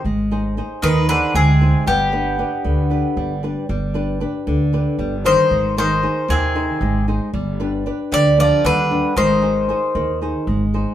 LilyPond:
<<
  \new Staff \with { instrumentName = "Bouzouki" } { \time 7/8 \tempo 4 = 115 r4. b'8 b'8 aes'4 | g'2. r8 | r2. c''8~ | c''8 c''4 aes'4. r8 |
r4. d''8 d''8 b'4 | c''2 r4. | }
  \new Staff \with { instrumentName = "Nylon-string guitar" } { \time 7/8 aes8 <ees' aes' c''>8 <ees' aes' c''>8 ees8 <ees' aes' c''>8 aes8 <ees' aes' c''>8 | g8 <d' g' b'>8 <d' g' b'>8 d8 <d' g' b'>8 g8 <d' g' b'>8 | g8 <d' g' b'>8 <d' g' b'>8 d8 <d' g' b'>8 g8 <d' g' b'>8 | aes8 <ees' aes' c''>8 <ees' aes' c''>8 ees8 <ees' aes' c''>8 aes8 <ees' aes' c''>8 |
g8 <d' g' b'>8 <d' g' b'>8 d8 <d' g' b'>8 g8 <d' g' b'>8 | aes8 <ees' aes' c''>8 <ees' aes' c''>8 ees8 <ees' aes' c''>8 aes8 <ees' aes' c''>8 | }
  \new Staff \with { instrumentName = "Bouzouki" } { \clef bass \time 7/8 r4. ees8 d8 c4 | b2. r8 | r2. ees8~ | ees8 ees4 c4. r8 |
r4. g8 f8 d4 | ees2 r4. | }
  \new Staff \with { instrumentName = "Upright bass" } { \clef bass \time 7/8 aes,,4. ees,4 d,4 | g,,4. d,4 g,,4 | g,,4. d,4 g,,4 | aes,,4. ees,4 aes,,4 |
g,,4. d,4 ees,4 | aes,,4. ees,4 aes,,4 | }
>>